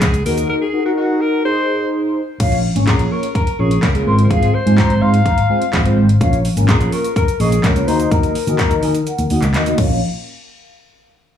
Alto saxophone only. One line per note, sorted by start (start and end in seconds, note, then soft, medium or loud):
0.00 0.23 G#4 loud
0.26 0.48 A#4 medium
0.50 0.55 A#4 loud
0.61 0.84 G#4 medium
0.86 0.91 F#4 medium
0.97 1.23 F#4 loud
1.21 1.44 A#4 loud
1.45 1.89 C5 loud
2.88 3.13 G#4 medium
3.12 3.35 A#4 medium
3.36 3.61 A#4 medium
3.59 3.84 G#4 medium
3.83 4.06 A#4 medium
4.06 4.23 A#4 medium
4.24 4.32 A#4 medium
4.30 4.56 G#4 loud
4.55 5.04 C5 loud
5.02 5.97 F5 loud
6.69 6.94 G#4 medium
6.92 7.15 A#4 medium
7.16 7.42 A#4 loud
7.40 7.66 G#4 loud
7.64 7.89 A#4 loud
7.87 8.13 C5 loud
8.11 9.54 A#4 loud